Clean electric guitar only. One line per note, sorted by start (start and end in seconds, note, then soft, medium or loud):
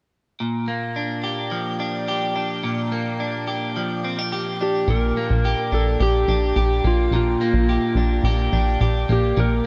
0.40 2.62 A#2 medium
0.68 2.92 A#3 soft
0.96 1.79 D4 soft
1.24 2.08 G4 medium
1.51 3.76 F3 medium
1.80 2.35 D4 medium
2.08 3.47 G4 medium
2.36 3.20 D4 medium
2.64 4.87 A#2 medium
2.92 5.17 A#3 medium
3.20 4.04 D4 soft
3.48 4.32 G4 medium
3.76 5.48 F3 medium
4.04 4.19 C4 medium
4.19 4.60 D4 soft
4.32 5.45 G4 medium
4.61 5.72 D4 soft
4.88 7.12 A#2 medium
5.17 6.84 A#3 medium
5.45 6.00 G4 medium
5.72 6.27 D4 medium
6.00 6.56 G4 medium
6.28 7.96 D4 medium
6.56 7.69 G4 medium
6.84 7.41 A#3 soft
7.13 9.36 A#2 medium
7.41 9.09 A#3 medium
7.69 8.24 G4 medium
7.97 8.52 D4 soft
8.25 8.81 G4 medium
8.53 9.43 D4 medium
8.81 9.66 G4 medium
9.09 9.64 A#3 soft
9.37 9.66 A#2 medium